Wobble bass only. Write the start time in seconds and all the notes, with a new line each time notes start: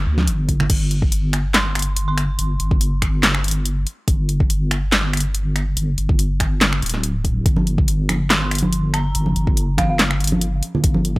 0.06 D2
0.27 G1
0.70 G1
2.39 G1
2.60 G1
4.08 G1
5.77 G1
5.98 G1
6.82 D1
7.46 G1
9.15 G1
9.36 G1
10.84 G1